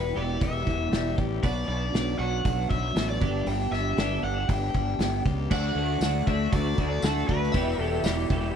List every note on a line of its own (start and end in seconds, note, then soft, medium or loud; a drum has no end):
0.00 0.12 E1 medium
0.00 0.67 E2 medium
0.00 0.14 E3 medium
0.00 0.90 G3 medium
0.00 0.17 B3 loud
0.00 0.40 B3 medium
0.00 0.15 E4 medium
0.00 0.14 G4 loud
0.00 0.18 B4 medium
0.16 0.37 E1 medium
0.16 1.42 E3 medium
0.16 1.43 B3 medium
0.16 1.42 E4 medium
0.16 1.15 G4 medium
0.16 0.40 D5 medium
0.40 0.63 E1 loud
0.40 1.68 B3 medium
0.40 1.15 E5 medium
0.40 kick loud
0.40 open hi-hat medium
0.66 0.88 E1 medium
0.66 1.43 E3 medium
0.66 kick medium
0.92 1.13 E1 medium
0.92 1.43 G3 medium
0.92 snare loud
0.92 open hi-hat medium
1.17 1.39 A1 medium
1.17 1.43 G4 medium
1.17 kick medium
1.42 1.64 B1 medium
1.42 2.70 B2 medium
1.42 2.18 F#3 medium
1.42 2.21 B3 medium
1.42 2.20 D4 loud
1.42 2.17 F#4 loud
1.42 1.67 D5 medium
1.42 kick loud
1.42 open hi-hat medium
1.68 1.90 B1 medium
1.68 2.95 B3 medium
1.68 2.16 D5 medium
1.94 2.15 B1 medium
1.94 2.44 D4 medium
1.94 snare loud
1.94 open hi-hat soft
2.19 2.40 B1 medium
2.19 3.21 F#3 medium
2.19 3.19 B3 medium
2.19 3.22 D4 medium
2.19 3.22 F#4 medium
2.19 2.69 F#5 medium
2.45 2.66 B1 loud
2.45 3.97 D4 medium
2.45 kick loud
2.45 open hi-hat medium
2.70 2.92 B1 medium
2.70 3.21 F#3 medium
2.70 3.06 E5 medium
2.70 kick medium
2.96 3.17 A1 medium
2.96 3.21 B3 medium
2.96 snare loud
2.96 open hi-hat medium
3.09 3.48 D5 medium
3.21 3.43 G1 medium
3.21 3.45 G2 medium
3.21 3.96 B3 medium
3.21 3.97 D4 loud
3.21 3.98 G4 loud
3.21 kick loud
3.46 3.68 G1 medium
3.46 4.74 G2 medium
3.46 3.71 G5 loud
3.46 open hi-hat medium
3.71 3.93 G1 medium
3.71 4.99 B3 medium
3.71 4.23 E5 loud
3.71 snare soft
3.97 4.19 G1 medium
3.97 5.23 B3 medium
3.97 4.48 D4 medium
3.97 5.25 G4 medium
3.97 snare loud
3.97 open hi-hat medium
4.23 4.44 G1 medium
4.23 5.24 G4 medium
4.23 4.47 F#5 medium
4.49 4.70 G1 loud
4.49 5.50 D4 medium
4.49 5.22 G5 medium
4.49 kick loud
4.49 open hi-hat medium
4.74 4.95 G1 medium
4.74 5.49 G3 medium
4.74 kick medium
4.98 5.20 G1 medium
4.98 5.50 B3 medium
4.98 snare loud
4.98 open hi-hat medium
5.25 5.47 C#2 medium
5.25 5.51 G4 medium
5.25 kick medium
5.50 5.71 D2 medium
5.50 5.74 D3 medium
5.50 5.75 A3 loud
5.50 5.75 D4 medium
5.50 5.76 F#4 loud
5.50 7.50 D5 medium
5.50 6.27 F#5 loud
5.50 kick loud
5.50 crash loud
5.75 5.96 D2 medium
5.75 6.00 D3 medium
5.75 6.00 A3 medium
5.75 6.01 D4 medium
5.75 6.02 F#4 medium
6.00 6.21 D2 medium
6.00 6.25 D3 medium
6.00 6.26 A3 medium
6.00 6.27 D4 medium
6.00 6.27 F#4 medium
6.00 snare loud
6.00 open hi-hat medium
6.00 tambourine loud
6.26 6.47 D2 medium
6.26 6.51 D3 medium
6.26 6.51 A3 medium
6.26 6.52 D4 medium
6.26 6.52 F#4 medium
6.26 6.53 E5 loud
6.26 kick medium
6.52 6.73 D2 loud
6.52 6.75 D3 medium
6.52 6.76 A3 loud
6.52 6.77 D4 loud
6.52 6.77 F#4 loud
6.52 6.88 D5 loud
6.52 kick loud
6.52 open hi-hat medium
6.76 6.98 D2 medium
6.76 7.01 D3 medium
6.76 7.01 A3 medium
6.76 7.02 D4 medium
6.76 7.03 F#4 loud
6.76 kick medium
6.89 7.03 D5 medium
7.02 7.23 D2 medium
7.02 7.26 D3 medium
7.02 7.27 A3 medium
7.02 7.27 D4 medium
7.02 7.28 F#4 medium
7.02 7.28 A4 medium
7.02 snare loud
7.02 open hi-hat medium
7.02 tambourine loud
7.18 snare soft
7.27 7.49 D2 medium
7.27 7.52 D3 medium
7.27 7.52 A3 medium
7.27 7.52 D4 loud
7.27 7.53 F#4 medium
7.27 7.81 B4 medium
7.27 kick medium
7.43 snare soft
7.52 7.74 E1 medium
7.52 7.76 E2 medium
7.52 7.77 B2 medium
7.52 7.77 E3 loud
7.52 7.78 G3 loud
7.52 7.79 B3 loud
7.52 7.79 E4 loud
7.52 7.79 G4 loud
7.52 8.56 E5 loud
7.52 kick loud
7.52 open hi-hat medium
7.77 7.99 E1 medium
7.77 8.02 E2 medium
7.77 8.02 B2 medium
7.77 8.03 E3 medium
7.77 8.04 G3 medium
7.77 8.04 B3 medium
7.77 8.04 E4 medium
7.77 8.04 G4 medium
7.77 8.00 A4 medium
8.03 8.24 E1 medium
8.03 8.27 E2 medium
8.03 8.28 B2 medium
8.03 8.28 E3 medium
8.03 8.29 G3 medium
8.03 8.30 B3 medium
8.03 8.30 E4 medium
8.03 8.29 G4 medium
8.03 snare loud
8.03 open hi-hat medium
8.03 tambourine medium
8.28 8.50 E1 loud
8.28 8.53 E2 medium
8.28 8.54 B2 medium
8.28 8.54 E3 medium
8.28 8.55 G3 medium
8.28 8.56 B3 medium
8.28 8.55 E4 medium
8.28 8.56 G4 medium
8.28 kick medium